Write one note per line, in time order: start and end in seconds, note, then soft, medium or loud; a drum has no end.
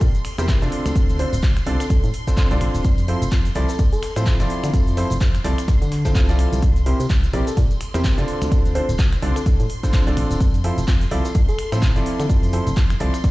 0.00 0.11 A#2 loud
0.00 6.61 C6 medium
0.00 kick loud
0.00 closed hi-hat medium
0.00 open hi-hat medium
0.00 tambourine medium
0.00 shaker medium
0.15 closed hi-hat soft
0.15 tambourine soft
0.15 shaker soft
0.25 finger snap medium
0.25 closed hi-hat medium
0.25 open hi-hat loud
0.38 0.53 E2 medium
0.38 0.57 C3 loud
0.38 0.56 C4 medium
0.38 0.57 E4 medium
0.38 0.57 G4 medium
0.38 0.57 A#4 medium
0.38 0.56 C5 loud
0.38 finger snap medium
0.38 closed hi-hat soft
0.38 tambourine medium
0.38 shaker medium
0.48 kick loud
0.48 snare loud
0.48 clap loud
0.48 closed hi-hat medium
0.48 tambourine medium
0.48 shaker medium
0.62 0.69 C3 medium
0.62 1.17 D3 medium
0.62 1.17 C4 medium
0.62 1.17 D4 medium
0.62 1.17 F4 medium
0.62 1.17 A4 medium
0.62 1.17 D5 loud
0.62 snare soft
0.62 closed hi-hat soft
0.62 tambourine soft
0.62 shaker soft
0.72 closed hi-hat medium
0.72 open hi-hat loud
0.86 0.92 D2 loud
0.86 finger snap medium
0.86 snare soft
0.86 closed hi-hat soft
0.86 tambourine medium
0.86 shaker medium
0.95 1.26 D2 loud
0.95 kick loud
0.95 closed hi-hat medium
0.95 tambourine medium
0.95 shaker medium
1.09 closed hi-hat soft
1.09 tambourine soft
1.09 shaker soft
1.19 1.33 D3 medium
1.19 1.33 C4 medium
1.19 1.33 D4 medium
1.19 1.33 F4 medium
1.19 1.33 A4 medium
1.19 1.33 C5 medium
1.19 closed hi-hat medium
1.19 open hi-hat loud
1.33 1.40 D1 loud
1.33 closed hi-hat soft
1.33 tambourine medium
1.33 shaker medium
1.43 1.60 D2 loud
1.43 kick loud
1.43 snare loud
1.43 clap loud
1.43 closed hi-hat medium
1.43 tambourine medium
1.43 shaker medium
1.57 finger snap medium
1.57 closed hi-hat soft
1.57 tambourine soft
1.57 shaker soft
1.66 1.76 C2 loud
1.66 1.80 D3 medium
1.66 1.80 C4 medium
1.66 1.80 D4 medium
1.66 1.80 F4 medium
1.66 1.80 A4 medium
1.66 1.80 D5 loud
1.66 closed hi-hat medium
1.66 open hi-hat medium
1.80 2.14 A4 medium
1.80 finger snap medium
1.80 closed hi-hat soft
1.80 tambourine medium
1.80 shaker medium
1.90 1.99 C2 loud
1.90 kick loud
1.90 closed hi-hat medium
1.90 tambourine medium
1.90 shaker medium
2.04 2.11 A2 loud
2.04 closed hi-hat soft
2.04 tambourine soft
2.04 shaker soft
2.14 closed hi-hat medium
2.14 open hi-hat loud
2.27 2.46 D3 loud
2.27 2.46 C4 medium
2.27 2.46 D4 medium
2.27 2.46 F4 medium
2.27 2.46 A4 medium
2.27 2.46 C5 loud
2.27 kick medium
2.27 snare soft
2.27 closed hi-hat soft
2.27 tambourine medium
2.27 shaker medium
2.37 kick loud
2.37 snare loud
2.37 clap loud
2.37 closed hi-hat medium
2.37 tambourine medium
2.37 shaker medium
2.51 2.58 C2 loud
2.51 2.83 D3 medium
2.51 2.83 C4 medium
2.51 2.83 D4 medium
2.51 2.83 F4 medium
2.51 2.83 A4 medium
2.51 2.83 D5 loud
2.51 closed hi-hat soft
2.51 tambourine soft
2.51 shaker soft
2.61 2.70 A1 medium
2.61 finger snap medium
2.61 closed hi-hat medium
2.61 open hi-hat medium
2.74 2.81 D1 medium
2.74 closed hi-hat soft
2.74 tambourine medium
2.74 shaker medium
2.84 3.15 F2 loud
2.84 kick loud
2.84 closed hi-hat medium
2.84 tambourine medium
2.84 shaker medium
2.98 closed hi-hat soft
2.98 tambourine soft
2.98 shaker soft
3.08 3.22 F3 medium
3.08 3.22 C4 medium
3.08 3.22 E4 medium
3.08 3.22 F4 medium
3.08 3.22 A4 medium
3.08 3.22 C5 medium
3.08 closed hi-hat medium
3.08 open hi-hat loud
3.22 3.29 F1 loud
3.22 closed hi-hat soft
3.22 tambourine medium
3.22 shaker medium
3.32 3.49 F2 loud
3.32 kick loud
3.32 snare loud
3.32 clap loud
3.32 closed hi-hat medium
3.32 tambourine medium
3.32 shaker medium
3.45 closed hi-hat soft
3.45 tambourine soft
3.45 shaker soft
3.55 3.65 C2 loud
3.55 3.69 F3 medium
3.55 3.69 C4 medium
3.55 3.69 E4 medium
3.55 3.69 F4 medium
3.55 3.69 A4 medium
3.55 3.69 D5 loud
3.55 snare soft
3.55 closed hi-hat medium
3.55 open hi-hat medium
3.68 3.80 A4 medium
3.68 snare soft
3.68 closed hi-hat soft
3.68 tambourine medium
3.68 shaker medium
3.79 3.88 C2 loud
3.79 kick loud
3.79 closed hi-hat medium
3.79 open hi-hat medium
3.79 tambourine medium
3.79 shaker medium
3.93 4.40 A4 medium
3.93 closed hi-hat soft
3.93 tambourine soft
3.93 shaker soft
4.03 finger snap medium
4.03 snare loud
4.03 closed hi-hat medium
4.03 open hi-hat loud
4.16 4.31 A2 medium
4.16 4.35 F3 medium
4.16 4.34 C4 medium
4.16 4.35 E4 medium
4.16 4.35 F4 medium
4.16 4.35 A4 medium
4.16 4.35 C5 loud
4.16 finger snap medium
4.16 snare soft
4.16 closed hi-hat soft
4.16 tambourine medium
4.16 shaker medium
4.26 kick loud
4.26 clap loud
4.26 closed hi-hat medium
4.26 tambourine medium
4.26 shaker medium
4.40 4.47 F1 medium
4.40 4.95 F3 medium
4.40 4.95 C4 medium
4.40 4.95 E4 medium
4.40 4.95 F4 medium
4.40 4.95 A4 medium
4.40 4.95 D5 loud
4.40 snare loud
4.40 closed hi-hat medium
4.40 closed hi-hat soft
4.40 tambourine soft
4.40 shaker soft
4.50 snare soft
4.50 open hi-hat medium
4.63 4.71 D3 loud
4.63 finger snap medium
4.63 closed hi-hat medium
4.63 closed hi-hat soft
4.63 tambourine medium
4.63 shaker medium
4.74 5.04 F2 loud
4.74 kick loud
4.74 closed hi-hat medium
4.74 tambourine medium
4.74 shaker medium
4.87 closed hi-hat soft
4.87 tambourine soft
4.87 shaker soft
4.97 5.11 F3 medium
4.97 5.11 C4 medium
4.97 5.11 E4 medium
4.97 5.11 F4 medium
4.97 5.11 A4 medium
4.97 5.11 C5 medium
4.97 snare loud
4.97 closed hi-hat medium
4.97 open hi-hat loud
5.10 5.18 F1 loud
5.10 closed hi-hat soft
5.10 tambourine medium
5.10 shaker medium
5.21 5.38 F2 loud
5.21 kick loud
5.21 snare soft
5.21 clap loud
5.21 closed hi-hat medium
5.21 tambourine medium
5.21 shaker medium
5.35 finger snap medium
5.35 snare soft
5.35 closed hi-hat soft
5.35 tambourine soft
5.35 shaker soft
5.44 5.54 C2 loud
5.44 5.58 F3 medium
5.44 5.58 C4 medium
5.44 5.58 E4 medium
5.44 5.58 F4 medium
5.44 5.58 A4 medium
5.44 5.59 A4 medium
5.44 5.58 D5 loud
5.44 snare loud
5.44 closed hi-hat medium
5.44 open hi-hat medium
5.58 finger snap medium
5.58 closed hi-hat soft
5.58 tambourine medium
5.58 shaker medium
5.68 5.77 C2 loud
5.68 kick loud
5.68 snare loud
5.68 closed hi-hat medium
5.68 tambourine medium
5.68 shaker medium
5.82 6.17 D3 loud
5.82 closed hi-hat soft
5.82 tambourine soft
5.82 shaker soft
5.92 snare loud
5.92 closed hi-hat medium
5.92 open hi-hat loud
6.05 6.23 F3 medium
6.05 6.23 C4 medium
6.05 6.23 E4 medium
6.05 6.23 F4 medium
6.05 6.23 A4 medium
6.05 6.68 A4 medium
6.05 6.23 C5 loud
6.05 kick medium
6.05 snare loud
6.05 closed hi-hat soft
6.05 closed hi-hat medium
6.05 tambourine medium
6.05 shaker medium
6.14 6.46 C2 loud
6.14 kick loud
6.14 snare loud
6.14 clap loud
6.14 closed hi-hat medium
6.14 tambourine medium
6.14 shaker medium
6.29 6.61 F3 medium
6.29 6.61 C4 medium
6.29 6.61 E4 medium
6.29 6.61 F4 medium
6.29 6.61 A4 medium
6.29 6.61 D5 loud
6.29 snare loud
6.29 closed hi-hat soft
6.29 closed hi-hat medium
6.29 tambourine soft
6.29 shaker soft
6.39 finger snap medium
6.39 closed hi-hat medium
6.39 open hi-hat medium
6.53 6.59 C2 loud
6.53 closed hi-hat soft
6.53 tambourine medium
6.53 shaker medium
6.62 6.93 C2 loud
6.62 13.31 C6 medium
6.62 kick loud
6.62 closed hi-hat medium
6.62 tambourine medium
6.62 shaker medium
6.76 closed hi-hat soft
6.76 tambourine soft
6.76 shaker soft
6.86 7.00 C3 medium
6.86 7.00 C4 medium
6.86 7.00 E4 medium
6.86 7.00 G4 medium
6.86 7.00 A#4 medium
6.86 7.00 C5 medium
6.86 closed hi-hat medium
6.86 open hi-hat loud
7.00 7.07 C3 loud
7.00 closed hi-hat soft
7.00 tambourine medium
7.00 shaker medium
7.10 7.27 C2 loud
7.10 kick loud
7.10 snare loud
7.10 clap loud
7.10 closed hi-hat medium
7.10 tambourine medium
7.10 shaker medium
7.24 closed hi-hat soft
7.24 tambourine soft
7.24 shaker soft
7.33 7.43 A#1 loud
7.33 7.47 C3 medium
7.33 7.47 C4 medium
7.33 7.47 E4 medium
7.33 7.47 G4 medium
7.33 7.47 A#4 medium
7.33 7.47 D5 loud
7.33 snare soft
7.33 closed hi-hat medium
7.33 open hi-hat medium
7.47 7.58 A4 medium
7.47 snare soft
7.47 closed hi-hat soft
7.47 tambourine medium
7.47 shaker medium
7.57 7.66 A#2 loud
7.57 kick loud
7.57 closed hi-hat medium
7.57 open hi-hat medium
7.57 tambourine medium
7.57 shaker medium
7.70 closed hi-hat soft
7.70 tambourine soft
7.70 shaker soft
7.81 finger snap medium
7.81 closed hi-hat medium
7.81 open hi-hat loud
7.94 8.09 E2 medium
7.94 8.12 C3 medium
7.94 8.12 C4 medium
7.94 8.12 E4 medium
7.94 8.12 G4 medium
7.94 8.12 A#4 medium
7.94 8.12 C5 loud
7.94 finger snap medium
7.94 closed hi-hat soft
7.94 tambourine medium
7.94 shaker medium
8.04 kick loud
8.04 snare loud
8.04 clap loud
8.04 closed hi-hat medium
8.04 tambourine medium
8.04 shaker medium
8.18 8.25 C3 medium
8.18 8.73 D3 medium
8.18 8.73 C4 medium
8.18 8.73 D4 medium
8.18 8.73 F4 medium
8.18 8.73 A4 medium
8.18 8.73 D5 loud
8.18 snare soft
8.18 closed hi-hat soft
8.18 tambourine soft
8.18 shaker soft
8.28 closed hi-hat medium
8.28 open hi-hat medium
8.41 8.48 D2 loud
8.41 finger snap medium
8.41 snare soft
8.41 closed hi-hat soft
8.41 tambourine medium
8.41 shaker medium
8.52 8.82 D2 loud
8.52 kick loud
8.52 closed hi-hat medium
8.52 tambourine medium
8.52 shaker medium
8.65 closed hi-hat soft
8.65 tambourine soft
8.65 shaker soft
8.75 8.89 D3 medium
8.75 8.89 C4 medium
8.75 8.89 D4 medium
8.75 8.89 F4 medium
8.75 8.89 A4 medium
8.75 8.89 C5 medium
8.75 closed hi-hat medium
8.75 open hi-hat loud
8.89 8.96 D1 loud
8.89 closed hi-hat soft
8.89 tambourine medium
8.89 shaker medium
8.99 9.16 D2 loud
8.99 kick loud
8.99 snare loud
8.99 clap loud
8.99 closed hi-hat loud
8.99 closed hi-hat medium
8.99 shaker medium
9.13 finger snap medium
9.13 closed hi-hat soft
9.13 tambourine soft
9.13 shaker soft
9.22 9.32 C2 loud
9.22 9.36 D3 medium
9.22 9.36 C4 medium
9.22 9.36 D4 medium
9.22 9.36 F4 medium
9.22 9.36 A4 medium
9.22 9.36 D5 loud
9.22 closed hi-hat medium
9.22 open hi-hat medium
9.36 9.70 A4 medium
9.36 finger snap medium
9.36 closed hi-hat soft
9.36 tambourine medium
9.36 shaker medium
9.46 9.55 C2 loud
9.46 kick loud
9.46 closed hi-hat medium
9.46 tambourine medium
9.46 shaker medium
9.60 9.67 A2 loud
9.60 closed hi-hat soft
9.60 tambourine soft
9.60 shaker soft
9.70 closed hi-hat medium
9.70 open hi-hat loud
9.83 10.01 D3 medium
9.83 10.01 C4 medium
9.83 10.01 D4 medium
9.83 10.01 F4 medium
9.83 10.01 A4 medium
9.83 10.01 C5 loud
9.83 kick medium
9.83 snare soft
9.83 closed hi-hat soft
9.83 tambourine medium
9.83 shaker medium
9.93 kick loud
9.93 snare loud
9.93 clap loud
9.93 closed hi-hat medium
9.93 tambourine medium
9.93 shaker medium
10.07 10.14 C2 loud
10.07 10.39 D3 medium
10.07 10.39 C4 medium
10.07 10.39 D4 medium
10.07 10.39 F4 medium
10.07 10.39 A4 medium
10.07 10.39 D5 loud
10.07 closed hi-hat soft
10.07 tambourine soft
10.07 shaker soft
10.17 10.26 A1 loud
10.17 finger snap medium
10.17 closed hi-hat medium
10.17 open hi-hat medium
10.31 10.37 D1 medium
10.31 closed hi-hat soft
10.31 tambourine medium
10.31 shaker medium
10.41 10.71 F2 loud
10.41 kick loud
10.41 closed hi-hat medium
10.41 tambourine medium
10.41 shaker medium
10.54 closed hi-hat soft
10.54 tambourine soft
10.54 shaker soft
10.64 10.78 F3 medium
10.64 10.78 C4 medium
10.64 10.78 E4 medium
10.64 10.78 F4 medium
10.64 10.78 A4 medium
10.64 10.78 C5 medium
10.64 closed hi-hat medium
10.64 open hi-hat loud
10.78 10.85 F1 loud
10.78 closed hi-hat soft
10.78 tambourine medium
10.78 shaker medium
10.87 11.05 F2 loud
10.87 kick loud
10.87 snare loud
10.87 clap loud
10.87 closed hi-hat medium
10.87 tambourine medium
10.87 shaker medium
11.01 closed hi-hat soft
11.01 tambourine soft
11.01 shaker soft
11.11 11.21 C2 loud
11.11 11.25 F3 medium
11.11 11.25 C4 medium
11.11 11.25 E4 medium
11.11 11.25 F4 medium
11.11 11.25 A4 medium
11.11 11.25 D5 loud
11.11 snare soft
11.11 closed hi-hat medium
11.11 open hi-hat loud
11.25 11.35 A4 medium
11.25 snare soft
11.25 closed hi-hat soft
11.25 tambourine medium
11.25 shaker medium
11.35 11.44 C2 loud
11.35 kick loud
11.35 closed hi-hat medium
11.35 open hi-hat medium
11.35 shaker medium
11.49 11.96 A4 medium
11.49 closed hi-hat soft
11.49 tambourine soft
11.49 shaker soft
11.59 finger snap medium
11.59 closed hi-hat medium
11.59 open hi-hat loud
11.72 11.87 A2 medium
11.72 11.90 F3 loud
11.72 11.90 C4 medium
11.72 11.90 E4 medium
11.72 11.90 F4 medium
11.72 11.90 A4 medium
11.72 11.90 C5 loud
11.72 finger snap medium
11.72 closed hi-hat soft
11.72 tambourine medium
11.72 shaker medium
11.82 kick loud
11.82 snare loud
11.82 clap loud
11.82 closed hi-hat medium
11.82 shaker medium
11.96 12.03 F1 medium
11.96 12.51 F3 medium
11.96 12.51 C4 medium
11.96 12.51 E4 medium
11.96 12.51 F4 medium
11.96 12.51 A4 medium
11.96 12.51 D5 loud
11.96 snare soft
11.96 closed hi-hat soft
11.96 tambourine soft
11.96 shaker soft
12.06 closed hi-hat medium
12.06 open hi-hat loud
12.20 12.26 D3 loud
12.20 finger snap medium
12.20 snare soft
12.20 closed hi-hat soft
12.20 tambourine medium
12.20 shaker medium
12.29 12.60 F2 loud
12.29 kick loud
12.29 closed hi-hat medium
12.29 tambourine medium
12.29 shaker medium
12.43 closed hi-hat soft
12.43 tambourine soft
12.43 shaker soft
12.53 12.67 F3 medium
12.53 12.67 C4 medium
12.53 12.67 E4 medium
12.53 12.67 F4 medium
12.53 12.67 A4 medium
12.53 12.67 C5 medium
12.53 closed hi-hat medium
12.53 open hi-hat loud
12.67 12.74 F1 loud
12.67 closed hi-hat soft
12.67 tambourine medium
12.67 shaker medium
12.76 12.94 F2 loud
12.76 kick loud
12.76 snare loud
12.76 clap loud
12.76 closed hi-hat medium
12.76 tambourine medium
12.76 shaker medium
12.90 finger snap medium
12.90 closed hi-hat soft
12.90 tambourine soft
12.90 shaker soft
13.00 13.10 C2 loud
13.00 13.14 F3 loud
13.00 13.14 C4 medium
13.00 13.14 E4 medium
13.00 13.14 F4 medium
13.00 13.14 A4 medium
13.00 13.14 D5 loud
13.00 closed hi-hat medium
13.00 open hi-hat medium
13.14 finger snap medium
13.14 closed hi-hat soft
13.14 tambourine medium
13.14 shaker medium
13.24 13.31 C2 loud
13.24 kick loud
13.24 snare medium
13.24 closed hi-hat medium
13.24 tambourine medium
13.24 shaker medium